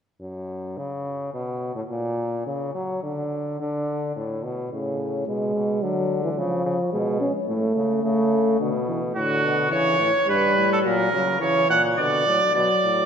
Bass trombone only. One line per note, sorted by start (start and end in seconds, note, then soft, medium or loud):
0.21 0.79 F#2 medium
0.77 1.33 C#3 medium
1.34 1.75 B2 medium
1.76 1.82 A2 medium
1.90 2.45 A#2 medium
2.46 2.74 C#3 medium
2.74 3.02 F#3 medium
3.03 3.59 D3 medium
3.60 4.15 D3 medium
4.16 4.46 A2 medium
4.44 4.72 B2 medium
4.72 5.26 A2 medium
5.28 5.55 B2 medium
5.55 5.82 B2 medium
5.83 6.39 D3 medium
6.38 6.65 C#3 medium
6.65 6.78 C#3 medium
6.93 7.28 B2 medium
7.48 7.74 A2 medium
7.76 8.04 C#3 medium
8.04 8.59 C#3 medium
8.61 9.15 B2 medium
9.16 9.46 A2 medium
9.44 9.74 B2 medium
9.72 10.00 C#3 medium
10.00 10.13 A2 medium
10.29 10.58 G2 medium
10.57 10.85 A2 medium
10.85 11.13 A#2 medium
11.13 11.41 C#3 medium
11.41 11.69 C#3 medium
11.70 11.97 A#2 medium
11.98 12.26 B2 medium
12.27 12.39 A2 medium
12.55 12.68 B2 medium
12.84 13.06 A2 medium